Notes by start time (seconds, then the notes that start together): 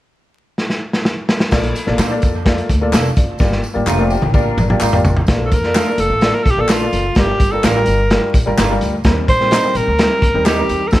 0.58 snare
0.70 snare
0.93 snare
1.05 snare
1.29 snare
1.40 snare
1.51 A#1 A#3 F4 A4 D5, kick, snare, crash, tambourine
1.63 closed hi-hat
1.76 closed hi-hat, tambourine
1.86 A#1 A#3 F4 A4 D5, snare
1.98 A#2 F3 A#3 D4 A4, snare, clap, closed hi-hat, tambourine
2.10 A#3 F4 A4 D5
2.22 F2, kick, closed hi-hat, tambourine
2.45 A#3 F4 A4 D5, kick, snare, closed hi-hat
2.58 closed hi-hat
2.69 D2, kick, closed hi-hat, tambourine
2.81 A#3 F4 A4 D5
2.92 F1 F3 A#3 D4 A4 F5, snare, clap, closed hi-hat, tambourine
3.16 F#1 F4 D5, kick, closed hi-hat, tambourine
3.39 G1 A#3 F4 G4 D5, kick, snare, tambourine
3.52 snare
3.64 tambourine
3.74 G1 A#3 F4 G4 D5
3.86 F1 G3 A3 D4 F4 A#4, clap, tambourine
3.99 A#3 F4 G4 D5
4.10 A#3 G4, tambourine
4.22 A1, mid tom
4.34 A#3 D4 F4 G4 A#4 D5, kick, tambourine
4.57 G1, mid tom, tambourine
4.70 A#3 F4 G4 D5, mid tom
4.81 G#1 G3 D4 F4 A#4, clap, tambourine
4.92 A#3 F4 G4 D5, floor tom
5.05 A1, floor tom, tambourine
5.16 floor tom
5.26 A#1 A#3 F4 A4 D5, kick, snare, closed hi-hat, tambourine
5.45 A4
5.51 F2 A#4, kick, closed hi-hat, tambourine
5.63 A#3 F4 A4 D5, snare
5.75 A3 D4 F4 A4, snare, clap, closed hi-hat, tambourine
5.87 A#3 F4 A4 D5
5.98 F1 A4, closed hi-hat, tambourine
6.09 A1
6.21 A#3 F4 A4 D5, snare, closed hi-hat, tambourine
6.34 A#4
6.43 A#1 A4, kick, closed hi-hat
6.51 G4
6.57 A#1 A#3 F4 A4 D5
6.61 A4
6.69 A3 D4 F4 A4, snare, clap, closed hi-hat, tambourine
6.82 A#3 F4 A4 D5
6.93 F#1, closed hi-hat, tambourine
7.15 G1 G3 D4 F4 G4 A#4, kick, snare, closed hi-hat, tambourine
7.40 G1, kick, closed hi-hat, tambourine
7.52 G3 D4 F4 A4 A#4
7.63 A1 G3 D4 F4 A#4, snare, clap, closed hi-hat, tambourine
7.76 G3 D4 F4 A#4
7.86 G1, closed hi-hat, tambourine
8.10 G3 D4 F4 A#4, snare, closed hi-hat
8.34 A#1, kick, closed hi-hat, tambourine
8.46 G1 G3 D4 F4 A#4
8.58 G1 G3 D4 F4 A#4, snare, clap, closed hi-hat, tambourine
8.70 G3 D4 F4 A#4
8.81 D2, closed hi-hat, tambourine
9.04 D#2 G3 C4 D#4 A#4, kick, snare, closed hi-hat, tambourine
9.28 A#1 C5, kick, closed hi-hat, tambourine
9.40 G3 C4 D#4 A#4, snare
9.51 G3 C4 D#4 A#4, snare, clap, closed hi-hat, tambourine
9.64 G3 C4 D#4 A#4
9.75 A#1 A#4, closed hi-hat, tambourine
9.87 D2
9.99 G3 C4 D#4 A#4, snare, closed hi-hat, tambourine
10.22 D#2, kick, closed hi-hat
10.34 D#2 G3 C4 D#4 A#4
10.45 G3 C4 D#4 G4 A#4, snare, clap, closed hi-hat, tambourine
10.59 G3 C4 D#4 A#4
10.69 E2, closed hi-hat, tambourine
10.88 A4 A#4, tambourine
10.92 F2 F3 C4 D#4 A4, kick, snare, closed hi-hat